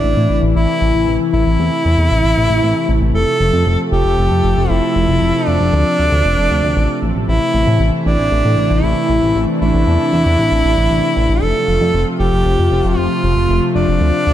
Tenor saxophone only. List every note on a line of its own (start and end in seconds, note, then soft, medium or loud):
0.00 0.46 D4 loud
0.56 1.23 E4 loud
1.34 3.04 E4 loud
3.15 3.82 A4 loud
3.92 4.71 G4 loud
4.70 5.49 E4 loud
5.47 7.18 D4 loud
7.28 7.95 E4 loud
8.06 8.85 D4 loud
8.84 9.51 E4 loud
9.61 11.44 E4 loud
11.42 12.09 A4 loud
12.19 12.99 G4 loud
12.97 13.65 F4 loud
13.75 14.33 D4 loud